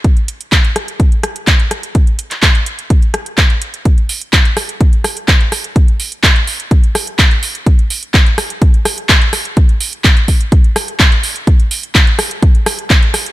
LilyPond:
\new DrumStaff \with { instrumentName = "Drums" } \drummode { \time 4/4 \tempo 4 = 126 <hh bd>16 hh16 hh16 hh16 <hc hh bd>16 hh16 <hh ss>16 hh16 <hh bd>16 hh16 <hh ss>16 hh16 <hc hh bd>16 hh16 <hh ss>16 hh16 | <hh bd>16 hh16 hh16 <hc hh>16 <hc hh bd>16 hh16 hh16 hh16 <hh bd>16 hh16 <hh ss>16 hh16 <hc hh bd>16 hh16 hh16 hh16 | <hh bd>16 hh16 hho16 hh16 <hc hh bd>16 hh16 <hho ss>16 hh16 <hh bd>16 hh16 <hho ss>16 hh16 <hc hh bd>16 hh16 <hho ss>16 hh16 | <hh bd>16 hh16 hho16 hh16 <hc hh bd>16 hh16 hho16 hh16 <hh bd>16 hh16 <hho ss>16 hh16 <hc hh bd>16 hh16 hho16 hh16 |
<hh bd>16 hh16 hho16 hh16 <hc hh bd>16 hh16 <hho ss>16 hh16 <hh bd>16 hh16 <hho ss>16 hh16 <hc hh bd>16 hh16 <hho ss>16 hh16 | <hh bd>16 hh16 hho16 hh16 <hc hh bd>16 hh16 <hho bd>16 hh16 <hh bd>16 hh16 <hho ss>16 hh16 <hc hh bd>16 hh16 hho16 hh16 | <hh bd>16 hh16 hho16 hh16 <hc hh bd>16 hh16 <hho ss>16 hh16 <hh bd>16 hh16 <hho ss>16 hh16 <hc hh bd>16 hh16 <hho ss>16 hh16 | }